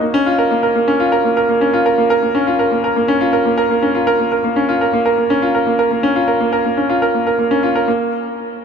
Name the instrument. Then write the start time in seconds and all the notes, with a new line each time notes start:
grand piano
0.01 A#3
0.14 C#4
0.26 F4
0.38 A#4
0.51 A#3
0.63 A#4
0.75 A#3
0.88 C#4
1.00 F4
1.12 A#4
1.25 A#3
1.37 A#4
1.49 A#3
1.61 C#4
1.73 F4
1.86 A#4
1.98 A#3
2.10 A#4
2.23 A#3
2.35 C#4
2.47 F4
2.59 A#4
2.72 A#3
2.84 A#4
2.96 A#3
3.08 C#4
3.21 F4
3.33 A#4
3.46 A#3
3.58 A#4
3.70 A#3
3.82 C#4
3.95 F4
4.07 A#4
4.19 A#3
4.32 A#4
4.44 A#3
4.56 C#4
4.69 F4
4.81 A#4
4.93 A#3
5.06 A#4
5.18 A#3
5.30 C#4
5.42 F4
5.55 A#4
5.67 A#3
5.79 A#4
5.91 A#3
6.03 C#4
6.16 F4
6.28 A#4
6.40 A#3
6.53 A#4
6.65 A#3
6.77 C#4
6.89 F4
7.02 A#4
7.14 A#3
7.27 A#4
7.39 A#3
7.51 C#4
7.63 F4
7.75 A#4
7.88 A#3